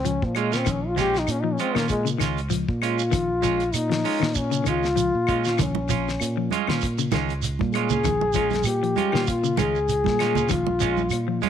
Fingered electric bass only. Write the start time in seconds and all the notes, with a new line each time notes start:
Already playing: C#2
0.22 A#2
0.67 A#1
1.29 A#2
1.76 A#2
2.20 C#2
2.68 A#2
3.13 A#1
3.76 A#2
4.22 A#2
4.67 C#2
5.15 A#2
5.60 A#1
6.21 A#2
6.68 A#2
7.13 C#2
7.61 A#2
8.06 A#1
8.66 A#2
9.14 A#2
9.59 C#2
10.06 A#2
10.51 A#1
11.13 A#2